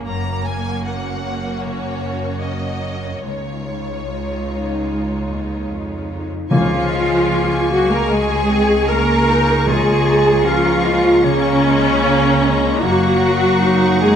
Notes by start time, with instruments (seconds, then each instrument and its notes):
Already playing: harp C#3 A#3 C#4 G#4, viola section A#3
0.07 double bass section F#1, cello section F#2, harp F#2, viola section C#4, violin section F#4 C#5 A#5
0.45 harp A#3, violin section G#5
0.84 harp F#4, violin section F#5
1.61 harp C#3, violin section C#5
2.03 harp A#3
2.41 harp F#4, violin section D#5
3.24 double bass section C#2, cello section C#2, harp C#3, viola section G#3 D#4, violin section F4 C#5
3.67 harp G#3
4.08 cello section C#2, harp F4
4.48 harp D#4
5.29 cello section D#2, harp G#3
5.70 cello section F2, harp F4
6.10 harp D#4
6.50 double bass section C#2, timpani C#3, harp C#3, cello section F3, french horn section G#3 G#4, clarinet A#3, viola section F4, flute section F5, violin section G#5 C#6
6.90 clarinet G#3
7.30 clarinet A#3, harp G#4
7.71 cello section F#3, viola section F#4, flute section F#5
7.90 cello section A#3, viola section A#4, flute section A#5
8.09 cello section G#3, harp G#3, clarinet G#3, viola section G#4, flute section G#5
8.50 clarinet C4
8.89 cello section A#3, clarinet C#4, harp G#4, viola section A#4, flute section A#5
9.28 harp C#4, clarinet D#4
9.66 harp C#3, timpani C#3, cello section G#3, french horn section A#3, clarinet F4, viola section G#4, flute section G#5, violin section A#5
10.06 harp A#3
10.45 cello section F3, clarinet C#4, viola section F4, harp G#4, flute section F5
10.84 clarinet G#3, harp C#4
11.24 harp C#3, cello section C#3, clarinet A#3, viola section C#4, flute section C#5
11.64 clarinet G#3, harp A#3
12.03 clarinet A#3
12.43 clarinet G#3
12.82 double bass section F#1, harp F#2, cello section F#3, clarinet A#3, french horn section F#4, viola section F#4, flute section F#5, violin section F#5 C#6
13.23 harp A#3
13.61 clarinet D#4, harp F#4
14.01 cello section G#3, harp C#4, viola section G#4, flute section G#5